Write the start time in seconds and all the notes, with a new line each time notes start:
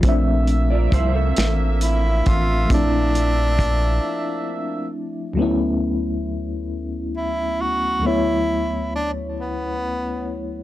0.01 A#1 F3 A3 A#3 C4 E5, kick, closed hi-hat
0.06 D4 E5
0.47 closed hi-hat
0.70 F4 D5
0.92 C2 E4 C5, kick, closed hi-hat
1.15 C4 A4
1.36 A1, snare, closed hi-hat
1.81 E4, closed hi-hat
2.26 A1 F4, kick, closed hi-hat
2.65 F3 A3
2.70 A#1 C4 D4 E4, kick, closed hi-hat
3.15 closed hi-hat
3.59 kick, closed hi-hat
5.33 D2 F#3 A3
5.39 B3 C#4 E4
7.17 E4
7.61 F#4
8.00 D2 F#3 A3
8.05 B3 E4 C#5
8.95 D4
9.40 B3